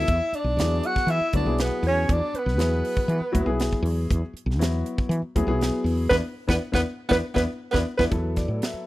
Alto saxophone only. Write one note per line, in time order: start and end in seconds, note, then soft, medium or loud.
0.00 0.36 E5 loud
0.35 0.87 D5 medium
0.86 1.11 F#5 loud
1.10 1.34 E5 loud
1.35 1.57 D5 medium
1.61 1.83 B4 medium
1.86 2.12 C#5 medium
2.10 2.37 D5 medium
2.35 3.85 B4 medium
6.09 6.16 B4 loud
6.48 6.54 B4 medium
6.75 6.81 B4 medium
7.11 7.17 B4 loud
7.36 7.42 B4 medium
7.73 7.79 B4 medium
7.97 8.04 B4 medium